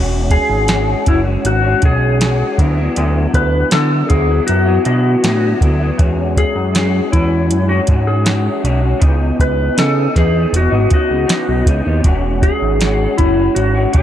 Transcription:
Already playing: analog synth bass E1, clean electric guitar E3 G#3 C#4 F#4
0.30 electric slide guitar G#4, kick, closed hi-hat
0.49 analog synth bass G#1
0.68 clean electric guitar E3 G#3 C#4 F#4, snare, closed hi-hat
1.05 analog synth bass F#1, clean electric guitar E3 G#3 C#4, electric slide guitar E4, kick, closed hi-hat
1.09 clean electric guitar F#4
1.24 clean electric guitar G#3 C#4 F#4
1.45 analog synth bass G#1, electric slide guitar F#4, closed hi-hat
1.62 clean electric guitar G#3 C#4 F#4
1.81 analog synth bass B1, clean electric guitar E3 G#3 C#4 F#4, kick, closed hi-hat
1.85 electric slide guitar G#4
2.19 clean electric guitar E3 G#3 C#4 F#4, snare, closed hi-hat
2.57 analog synth bass D2, clean electric guitar D3 F#3 B3 E4, kick, closed hi-hat
2.77 clean electric guitar F#3 B3 E4
2.95 analog synth bass D2, clean electric guitar D3 F#3 B3 E4, closed hi-hat
3.34 analog synth bass D2, electric slide guitar B4, kick, closed hi-hat
3.70 clean electric guitar D3 F#3 B3 E4, analog synth bass D3, electric slide guitar A4, snare, closed hi-hat
4.08 analog synth bass D2, clean electric guitar D3 F#3 B3 E4, electric slide guitar G#4, kick, closed hi-hat
4.27 clean electric guitar F#3 B3 E4
4.47 analog synth bass F#2, electric slide guitar F#4, closed hi-hat
4.65 clean electric guitar F#3 B3 E4
4.83 analog synth bass B2, clean electric guitar D3 F#3 B3 E4, electric slide guitar F#4, closed hi-hat
5.22 analog synth bass A2, clean electric guitar D3 F#3 B3 E4, snare, closed hi-hat
5.59 analog synth bass D2, clean electric guitar D3 F#3 B3, kick, closed hi-hat
5.63 clean electric guitar E4
5.79 clean electric guitar F#3 B3 E4
5.98 analog synth bass E2, clean electric guitar E3 G#3 C#4 F#4, kick, closed hi-hat
6.37 electric slide guitar G#4, kick, closed hi-hat
6.56 analog synth bass F#2
6.74 clean electric guitar E3 G#3 C#4 F#4, snare, closed hi-hat
7.11 analog synth bass E2, clean electric guitar E3 G#3 C#4 F#4, electric slide guitar E4, kick, closed hi-hat
7.50 analog synth bass F#2, closed hi-hat
7.68 clean electric guitar G#3 C#4 F#4, electric slide guitar F#4
7.87 analog synth bass G#2, clean electric guitar E3 G#3 C#4 F#4, kick, closed hi-hat
8.07 electric slide guitar G#4
8.24 clean electric guitar E3 G#3 C#4 F#4, snare, closed hi-hat
8.62 analog synth bass B1, clean electric guitar E3 G#3 C#4 F#4, closed hi-hat
8.81 clean electric guitar G#3 C#4 F#4
8.99 analog synth bass C#2, clean electric guitar C#3 E3 B3 D#4, kick, closed hi-hat
9.40 analog synth bass C#2, electric slide guitar B4, kick, closed hi-hat
9.76 clean electric guitar C#3 E3 B3 D#4, analog synth bass C#3, electric slide guitar A4, snare, closed hi-hat
10.14 analog synth bass E2, clean electric guitar C#3 E3 B3, electric slide guitar G#4, kick, snare, closed hi-hat
10.18 clean electric guitar D#4
10.32 clean electric guitar E3 B3 D#4
10.53 analog synth bass E1, electric slide guitar F#4, closed hi-hat
10.70 analog synth bass G#1, clean electric guitar E3 B3 D#4
10.89 clean electric guitar C#3 E3 B3 D#4, kick, closed hi-hat
10.94 electric slide guitar F#4
11.08 analog synth bass C#2, clean electric guitar E3 B3 D#4
11.27 clean electric guitar C#3 E3 B3 D#4, snare, closed hi-hat
11.48 analog synth bass B1
11.65 analog synth bass C#2, clean electric guitar C#3 E3 B3 D#4, kick, closed hi-hat
11.84 analog synth bass D#2, clean electric guitar E3 B3 D#4
12.04 analog synth bass E1, clean electric guitar E3 G#3 C#4 F#4, kick, closed hi-hat
12.42 electric slide guitar G#4, kick, closed hi-hat
12.62 analog synth bass G#1
12.79 clean electric guitar E3 G#3 C#4 F#4, snare, closed hi-hat
13.17 analog synth bass F#1, clean electric guitar E3 G#3 C#4 F#4, electric slide guitar E4, kick, closed hi-hat
13.36 clean electric guitar G#3 C#4 F#4
13.55 analog synth bass G#1, electric slide guitar F#4, closed hi-hat
13.75 clean electric guitar G#3 C#4 F#4
13.93 analog synth bass B1, clean electric guitar E3 G#3 C#4 F#4, electric slide guitar G#4, kick, closed hi-hat

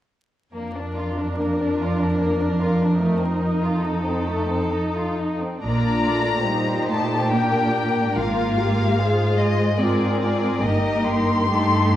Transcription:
0.54 cello section F2, violin section A#3 A#4, viola section D4
0.75 violin section D4
0.97 violin section F4
1.17 violin section D4
1.38 violin section A#3
1.60 violin section D4
1.79 violin section F4
2.01 violin section D4
2.22 violin section A#3
2.42 violin section D4
2.62 violin section F4
2.82 violin section D4
3.02 violin section A3, viola section D#4
3.21 violin section C4
3.42 violin section D#4
3.64 violin section F4
3.83 violin section D#4 A4
4.05 violin section C4
4.27 violin section A3
4.49 violin section C4
4.71 violin section D#4
4.95 violin section F4
5.19 violin section D#4
5.42 violin section C4
5.63 double bass section A#1, cello section A#2, viola section A#3 F4, violin section D4 D5 A#5
6.06 viola section A3
6.48 viola section G3 D#4, violin section G4 C5
6.90 viola section A3, violin section A5
7.33 viola section A#3 D4, violin section A#4 G5
7.75 violin section A#4
8.15 double bass section G#1, cello section G#2, viola section A#3 F4, violin section F4 F5
8.58 viola section G4
8.98 viola section G#3 G#4, violin section F4 C5
9.39 viola section G#3, violin section D#5
9.78 viola section C4 F4, violin section G#4 A#4 D5
10.20 violin section D5
10.63 double bass section G1, cello section G2, viola section A#3 D#4, violin section G4 A#4 D#5
11.08 violin section C6
11.50 viola section A3 D#4, violin section G4 A4

